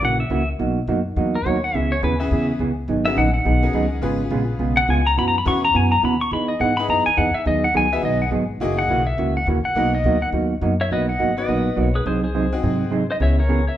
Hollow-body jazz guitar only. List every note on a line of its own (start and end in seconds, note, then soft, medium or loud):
0.02 0.21 C#3 medium
0.02 0.22 E3 medium
0.02 0.22 A#3 medium
0.02 0.22 C#4 medium
0.02 0.22 F#4 medium
0.30 0.41 C#3 medium
0.30 0.42 E3 medium
0.30 0.42 A#3 medium
0.30 0.42 C#4 medium
0.30 0.42 F#4 medium
0.59 0.79 B2 medium
0.59 0.79 F#3 medium
0.59 0.79 A#3 medium
0.59 0.79 D#4 medium
0.59 0.79 F#4 medium
0.88 0.99 B2 medium
0.88 0.99 F#3 medium
0.88 0.99 A#3 medium
0.88 0.99 D#4 medium
0.88 0.99 F#4 medium
1.16 1.36 B2 medium
1.16 1.36 F#3 medium
1.16 1.36 A#3 medium
1.16 1.36 D#4 medium
1.16 1.36 F#4 medium
1.45 1.56 B2 medium
1.45 1.56 F#3 medium
1.45 1.57 A#3 medium
1.45 1.57 D#4 medium
1.45 1.57 F#4 medium
1.74 1.94 C#3 medium
1.74 1.94 E3 medium
1.74 1.94 B3 medium
1.74 1.94 C#4 medium
1.74 1.94 G#4 medium
2.03 2.14 C#3 medium
2.03 2.14 E3 medium
2.03 2.14 B3 medium
2.03 2.14 C#4 medium
2.03 2.14 G#4 medium
2.32 2.51 C#3 medium
2.32 2.51 E3 medium
2.32 2.51 B3 medium
2.32 2.51 C#4 medium
2.32 2.51 G#4 medium
2.60 2.71 C#3 medium
2.60 2.71 E3 medium
2.60 2.71 B3 medium
2.60 2.71 C#4 medium
2.60 2.71 G#4 medium
2.88 3.08 D#3 medium
2.88 3.08 F#3 medium
2.88 3.08 B3 medium
2.88 3.08 D#4 medium
2.88 3.09 G#4 medium
3.16 3.27 D#3 medium
3.16 3.28 F#3 medium
3.16 3.28 B3 medium
3.16 3.28 D#4 medium
3.16 3.28 G#4 medium
3.45 3.65 D#3 medium
3.45 3.65 F#3 medium
3.45 3.65 B3 medium
3.45 3.65 D#4 medium
3.45 3.65 G#4 medium
3.74 3.85 D#3 medium
3.74 3.85 F#3 medium
3.74 3.85 B3 medium
3.74 3.85 D#4 medium
3.74 3.86 G#4 medium
4.02 4.22 C#3 medium
4.02 4.22 G#3 medium
4.02 4.22 B3 medium
4.02 4.22 F4 medium
4.02 4.22 G#4 medium
4.31 4.42 C#3 medium
4.31 4.42 G#3 medium
4.31 4.43 B3 medium
4.31 4.42 F4 medium
4.31 4.43 G#4 medium
4.59 4.79 C#3 medium
4.59 4.79 G#3 medium
4.59 4.80 B3 medium
4.59 4.80 F4 medium
4.59 4.80 G#4 medium
4.88 4.99 C#3 medium
4.88 5.00 G#3 medium
4.88 5.00 B3 medium
4.88 5.00 F4 medium
4.88 5.00 G#4 medium
5.17 5.37 B2 medium
5.17 5.37 E3 medium
5.17 5.37 B3 medium
5.17 5.37 C#4 medium
5.17 5.37 F#4 medium
5.46 5.57 B2 medium
5.46 5.57 E3 medium
5.46 5.57 B3 medium
5.46 5.57 C#4 medium
5.46 5.58 F#4 medium
5.73 5.94 B2 medium
5.73 5.94 E3 medium
5.73 5.94 B3 medium
5.73 5.94 C#4 medium
5.73 5.94 F#4 medium
6.03 6.14 B2 medium
6.03 6.14 E3 medium
6.03 6.14 B3 medium
6.03 6.15 C#4 medium
6.03 6.15 F#4 medium
6.32 6.51 E3 medium
6.32 6.52 B3 medium
6.32 6.52 D#4 medium
6.32 6.52 G#4 medium
6.60 6.71 E3 medium
6.60 6.71 B3 medium
6.60 6.72 D#4 medium
6.60 6.72 G#4 medium
6.88 7.08 E3 medium
6.88 7.09 B3 medium
6.88 7.09 D#4 medium
6.88 7.09 G#4 medium
7.17 7.28 E3 medium
7.17 7.29 B3 medium
7.17 7.29 D#4 medium
7.17 7.29 G#4 medium
7.46 7.66 D#3 medium
7.46 7.66 F#3 medium
7.46 7.66 B3 medium
7.46 7.66 D#4 medium
7.46 7.66 G#4 medium
7.74 7.86 D#3 medium
7.74 7.86 F#3 medium
7.74 7.86 B3 medium
7.74 7.86 D#4 medium
7.74 7.86 G#4 medium
8.03 8.23 D#3 medium
8.03 8.23 F#3 medium
8.03 8.23 B3 medium
8.03 8.23 D#4 medium
8.03 8.23 G#4 medium
8.31 8.43 D#3 medium
8.31 8.43 F#3 medium
8.31 8.43 B3 medium
8.31 8.43 D#4 medium
8.31 8.43 G#4 medium
8.60 8.80 C#3 medium
8.60 8.81 E3 medium
8.60 8.81 A#3 medium
8.60 8.81 C#4 medium
8.60 8.81 F#4 medium
8.89 9.00 C#3 medium
8.89 9.01 E3 medium
8.89 9.01 A#3 medium
8.89 9.01 C#4 medium
8.89 9.01 F#4 medium
9.18 9.38 C#3 medium
9.18 9.38 E3 medium
9.18 9.38 A#3 medium
9.18 9.38 C#4 medium
9.18 9.38 F#4 medium
9.47 9.58 C#3 medium
9.47 9.58 E3 medium
9.47 9.59 A#3 medium
9.47 9.59 C#4 medium
9.47 9.59 F#4 medium
9.76 9.96 B2 medium
9.76 9.96 F#3 medium
9.76 9.96 A#3 medium
9.76 9.96 D#4 medium
9.76 9.96 F#4 medium
10.05 10.16 B2 medium
10.05 10.16 F#3 medium
10.05 10.16 A#3 medium
10.05 10.16 D#4 medium
10.05 10.16 F#4 medium
10.33 10.53 B2 medium
10.33 10.53 F#3 medium
10.33 10.53 A#3 medium
10.33 10.53 D#4 medium
10.33 10.53 F#4 medium
10.61 10.73 B2 medium
10.61 10.73 F#3 medium
10.61 10.73 A#3 medium
10.61 10.73 D#4 medium
10.61 10.73 F#4 medium
10.91 11.10 B2 medium
10.91 11.11 F#3 medium
10.91 11.11 A#3 medium
10.91 11.11 D#4 medium
10.91 11.11 F#4 medium
11.19 11.30 B2 medium
11.19 11.30 F#3 medium
11.19 11.30 A#3 medium
11.19 11.30 D#4 medium
11.19 11.31 F#4 medium
11.48 11.68 B2 medium
11.48 11.68 F#3 medium
11.48 11.68 A#3 medium
11.48 11.68 D#4 medium
11.48 11.68 F#4 medium
11.76 11.88 B2 medium
11.76 11.88 F#3 medium
11.76 11.88 A#3 medium
11.76 11.88 D#4 medium
11.76 11.88 F#4 medium
12.06 12.25 C3 medium
12.06 12.25 F#3 medium
12.06 12.25 C4 medium
12.06 12.26 D#4 medium
12.06 12.26 G#4 medium
12.06 12.26 C5 medium
12.35 12.45 C3 medium
12.35 12.45 F#3 medium
12.35 12.46 C4 medium
12.35 12.46 D#4 medium
12.35 12.46 G#4 medium
12.35 12.46 C5 medium
12.63 12.83 C3 medium
12.63 12.83 F#3 medium
12.63 12.83 C4 medium
12.63 12.83 D#4 medium
12.63 12.83 G#4 medium
12.63 12.83 C5 medium
12.90 13.02 C3 medium
12.90 13.02 F#3 medium
12.90 13.02 C4 medium
12.90 13.03 D#4 medium
12.90 13.03 G#4 medium
12.90 13.03 C5 medium
13.20 13.40 C#3 medium
13.20 13.40 E3 medium
13.20 13.40 B3 medium
13.20 13.40 C#4 medium
13.20 13.40 G#4 medium
13.49 13.60 C#3 medium
13.49 13.60 E3 medium
13.49 13.60 B3 medium
13.49 13.60 C#4 medium
13.49 13.60 G#4 medium